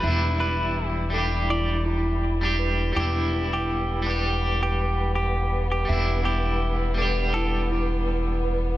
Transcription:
X:1
M:4/4
L:1/16
Q:"Swing 16ths" 1/4=82
K:Em
V:1 name="Clean electric guitar"
B2 B3 z3 d2 z6 | G3 G3 z3 G3 G3 G- | G2 G3 z3 A2 z6 |]
V:2 name="Celesta"
e2 z4 A2 E2 E4 B2 | E2 E8 z6 | e2 z4 A2 E2 E4 B2 |]
V:3 name="Clean electric guitar"
[G,DE]6 [G,DG]6- [G,DG] [G,DG]3 | [G,DE]6 [G,DG]8- [G,DG]2 | [G,DE]6 [G,DG]8- [G,DG]2 |]
V:4 name="String section"
[E,E]16 | B,16- | B,16 |]
V:5 name="Upright bass" clef=bass
E,,,16 | E,,,16 | E,,,16 |]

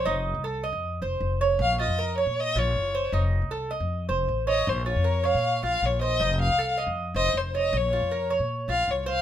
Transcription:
X:1
M:4/4
L:1/16
Q:1/4=156
K:Bbm
V:1 name="Violin"
z16 | f2 e4 d2 e2 d6 | z12 z2 e2 | c2 d4 f4 f2 d2 e2- |
e2 f4 z4 e2 c2 e2 | d6 z4 f2 d2 f2 |]
V:2 name="Cuban tres"
E4 =A2 e4 c4 d2- | d2 F2 B2 d4 F4 c2 | E4 =A2 e4 c4 d2- | d2 F2 B2 d4 F4 c2 |
E4 =A2 e4 c4 d2- | d2 F2 B2 d4 F4 c2 |]
V:3 name="Upright bass" clef=bass
F,,,3 C,,4 F,,3 F,,,2 F,,,4 | B,,,3 F,,4 B,,3 B,,,2 G,,,4 | F,,,3 C,,4 F,,3 F,,,2 =A,,,4 | B,,,3 F,,4 B,,3 B,,,2 B,,,4 |
F,,,3 C,,4 F,,3 F,,,2 F,,,4 | B,,,3 F,,4 B,,3 B,,,2 C,,4 |]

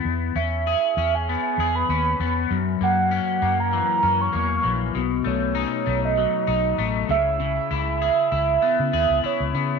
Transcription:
X:1
M:4/4
L:1/16
Q:"Swing 16ths" 1/4=98
K:E
V:1 name="Soft synth lead"
z2 e4- e g g3 b b3 z | z2 f4- f ^a a3 c' c'3 z | z2 c4- c d4- d z2 e2- | e12 c2 c2 |]
V:2 name="Clean electric guitar"
z2 C2 G2 C2 B,2 G2 C2 B,2 | F,,2 ^A,2 C2 A,2 E,2 C2 A,2 E,2 | B,,2 A,2 D2 A,2 F,2 D2 A,2 C,2 | C,2 E2 G2 E2 B,2 G2 E2 B,2 |]
V:3 name="Fingered electric bass" clef=bass
E,,2 E,,3 z E,,3 z E,,2 D,,2 E,,2 | F,,2 F,,3 z F,,3 z F,,2 E,,2 ^A,,,2 | B,,,2 B,,,3 z B,,,3 z B,,,2 A,,,2 C,,2- | C,,2 C,,3 z C,,2 z C, D,, C,, z C,, C,2 |]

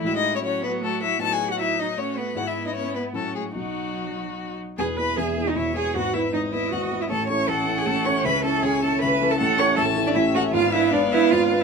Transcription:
X:1
M:3/4
L:1/16
Q:1/4=156
K:E
V:1 name="Violin"
e d2 c c2 B2 A2 e2 | a g2 f e2 d2 c2 B2 | f e2 d c2 B2 A2 G2 | F8- F2 z2 |
g2 b2 g3 d e2 g2 | f2 e2 d2 e2 f3 e | a2 c'2 a3 g a2 c'2 | b2 a2 g2 a2 b3 a |
[K:A] a2 c'2 a3 d e2 f2 | ^e2 =e2 d2 e2 ^e3 =e |]
V:2 name="Violin"
E4 F8 | F4 D4 F4 | E8 F4 | F8- F2 z2 |
B4 e4 c4 | B4 d8 | c4 f8 | e4 c4 e4 |
[K:A] f4 e8 | ^e12 |]
V:3 name="Cello"
E D2 C C2 B,2 A,2 E2 | A G2 F E2 D2 C2 B,2 | F E2 D C2 B,2 A,2 G,2 | F,8- F,2 z2 |
G2 B2 G3 D E2 G2 | F2 E2 D2 E2 F3 E | A2 c2 A3 G A2 c2 | B2 A2 G2 A2 B3 A |
[K:A] A2 c2 A3 D E2 F2 | ^E2 =E2 D2 E2 ^E3 z |]
V:4 name="Viola"
G,4 F,8 | F,8 A,4 | B,8 C4 | D8- D2 z2 |
G2 B2 G3 D E2 G2 | F2 E2 D2 E2 F3 E | C12- | C12 |
[K:A] C12 | B,12 |]
V:5 name="Grand piano"
[A,,A,EF]12 | [A,,B,DF]12 | [G,,B,EG]8 [A,,F,CF]4 | [B,,,F,DF]12 |
[E,,,E,,]2 [B,EG]2 [E,,,E,,]2 [B,EG]2 [E,,,E,,]2 [B,EG]2 | [G,,,G,,]2 [B,EB]2 [G,,,G,,]2 [B,EB]2 [G,,,G,,]2 [B,EB]2 | [A,,,A,,]2 [CEA]2 [A,,,A,,]2 [CEA]2 [A,,,A,,]2 [CEA]2 | [C,,C,]2 [CEA]2 [C,,C,]2 [CEA]2 [C,,C,]2 [CEA]2 |
[K:A] [A,,,A,,]2 [CEA]2 [A,,,A,,]2 [CEA]2 [A,,,A,,]2 [CEA]2 | [G,,,G,,]2 [B,DB]2 [G,,,G,,]2 [B,DB]2 [G,,,G,,]2 [B,DB]2 |]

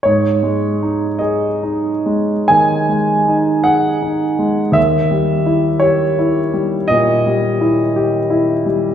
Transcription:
X:1
M:12/8
L:1/8
Q:3/8=55
K:D#phr
V:1 name="Grand piano"
c3 d3 g3 f3 | e3 c3 d4- d z |]
V:2 name="Grand piano"
G,, G, D G D G, D, G, D G D G, | D,, =G, E =G E G, A,, G, E G E G, |]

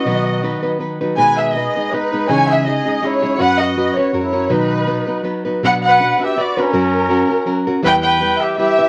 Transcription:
X:1
M:3/4
L:1/16
Q:"Swing" 1/4=162
K:B
V:1 name="Violin section"
d6 z6 | g2 e2 d4 B4 | g2 e2 d4 c4 | f2 d4 c3 c3 |
B8 z4 | [K:Bm] f2 f4 e2 d2 ^A2- | ^A8- A2 z2 | g2 g4 e2 e4 |]
V:2 name="Trumpet"
F6 z6 | B2 G2 G4 D4 | c2 G2 G4 E4 | B2 F4 F3 E3 |
D8 z4 | [K:Bm] B2 B4 G2 F2 C2- | C8- C2 z2 | B2 B4 G2 G4 |]
V:3 name="Nylon-string guitar"
[B,,D,F,B,DB]4 [F,B,DB]2 [F,B,DB]2 [F,B,DB]2 [F,B,DB]2 | [B,,D,G,B,DB]4 [G,B,DB]2 [G,B,DB]2 [G,B,DB]2 [G,B,DB]2 | [C,E,G,CDG]4 [G,CDG]2 [G,CDG]2 [G,CDG]2 [G,CDG]2 | [F,CFB]4 [F,CFB]2 [CFB]2 [G,CFA]2 [CFA]2 |
[B,,D,F,B,DB]4 [F,B,DB]2 [F,B,DB]2 [F,B,DB]2 [F,B,DB]2 | [K:Bm] [B,,F,B,DFB]4 [B,DFB]2 [B,DFB]2 [B,DFB]2 [B,DFB]2 | [F,CF^A]4 [F,CFA]2 [CFA]2 [F,CFA]2 [CFA]2 | [E,G,B,EB]4 [G,B,EB]4 [G,B,EB]2 [B,EB]2 |]
V:4 name="Tine electric piano" clef=bass
B,,8 z4 | B,,8 z4 | C,8 z4 | F,,8 F,,4 |
B,,8 z4 | [K:Bm] B,,8 z4 | F,,8 z4 | E,,8 z4 |]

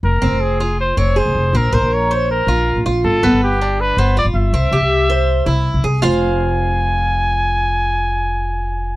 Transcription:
X:1
M:4/4
L:1/16
Q:1/4=161
K:Fm
V:1 name="Trumpet"
B4 A4 c2 d2 c4 | B2 c2 d4 B6 z2 | =A4 G4 =B2 c2 =d2 =e2- | =e12 z4 |
a16- | a16 |]
V:2 name="Cuban tres"
z2 C4 F4 C2 A4 | C2 B4 c4 F4 F2- | F2 =B,4 =D4 B,2 F4 | C2 G4 c4 =E4 A2 |
[Fcf]16- | [Fcf]16 |]
V:3 name="Upright bass" clef=bass
F,,,2 F,,, z6 z F,,,3 F,,, F,,,2 | B,,,2 B,,, B,,,6- B,,, B,,,3 B,,, B,,,2 | G,,,2 G,,, G,,,6- G,,, G,,,3 G,,, G,,,2 | C,,2 C,, C,,6- C,, C,,3 C,, C,,2 |
F,,,16- | F,,,16 |]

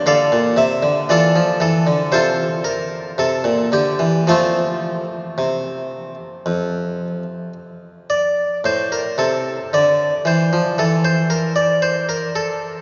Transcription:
X:1
M:4/4
L:1/16
Q:1/4=56
K:Aphr
V:1 name="Harpsichord"
[Adf]2 e2 [FAd]2 A2 [FAc]2 B2 A2 G2 | [A,CF]12 z2 d2 | c B A2 d2 c2 A c B d c B A2 |]
V:2 name="Harpsichord" clef=bass
D, B,, C, D, E, F, E, D, C,4 C, B,, D, E, | F,4 C,4 F,,4 z4 | A,,2 C,2 D,2 E, F, E,8 |]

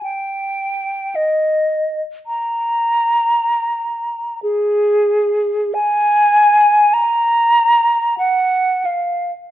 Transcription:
X:1
M:4/4
L:1/8
Q:1/4=52
K:Abdor
V:1 name="Flute"
=g2 e2 b4 | A2 a2 b2 g f |]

